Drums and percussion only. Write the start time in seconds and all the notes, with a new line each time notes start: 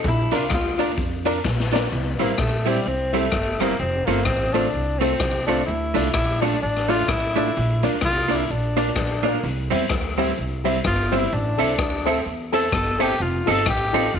0.04 kick, closed hi-hat, cabasa
0.31 closed hi-hat, cabasa
0.50 kick, cross-stick, closed hi-hat, cabasa
0.78 closed hi-hat, cabasa
0.97 kick, closed hi-hat, cabasa
1.25 closed hi-hat, cabasa
1.44 kick, snare, cabasa
1.60 snare
1.72 snare, cabasa
1.93 cabasa
2.19 closed hi-hat, cabasa
2.38 kick, cross-stick, cabasa
2.66 closed hi-hat, cabasa
2.85 cabasa
3.13 closed hi-hat, cabasa
3.32 kick, cross-stick, cabasa
3.60 cross-stick, closed hi-hat, cabasa
3.80 cabasa
4.07 closed hi-hat, cabasa
4.25 kick, cross-stick, cabasa
4.54 closed hi-hat, cabasa
4.73 cabasa
5.00 closed hi-hat, cabasa
5.20 kick, cross-stick, cabasa
5.48 closed hi-hat, cabasa
5.69 cabasa
5.95 closed hi-hat, cabasa
6.14 kick, cross-stick, cabasa
6.43 closed hi-hat, cabasa
6.61 cabasa
6.76 cross-stick
6.89 closed hi-hat, cabasa
7.08 kick, cross-stick, cabasa
7.36 open hi-hat, cabasa
7.55 hi-hat pedal, cabasa
7.83 closed hi-hat, cabasa
8.01 kick, cross-stick, cabasa
8.30 closed hi-hat, cabasa
8.49 cabasa
8.77 closed hi-hat, cabasa
8.96 kick, cross-stick, cabasa
9.24 open hi-hat, cabasa
9.43 hi-hat pedal, cabasa
9.71 closed hi-hat, cabasa
9.89 kick, cross-stick, cabasa
10.18 closed hi-hat, cabasa
10.36 cabasa
10.65 closed hi-hat, cabasa
10.84 kick, cross-stick, cabasa
11.12 closed hi-hat, cabasa
11.32 cabasa
11.59 closed hi-hat, cabasa
11.79 kick, cross-stick, cabasa
12.07 closed hi-hat, cabasa
12.24 cabasa
12.53 closed hi-hat, cabasa
12.72 kick, cross-stick, cabasa
13.00 cross-stick, closed hi-hat, cabasa
13.20 cabasa
13.47 closed hi-hat, cabasa
13.66 kick, cross-stick, cabasa
13.94 closed hi-hat, cabasa
14.14 cabasa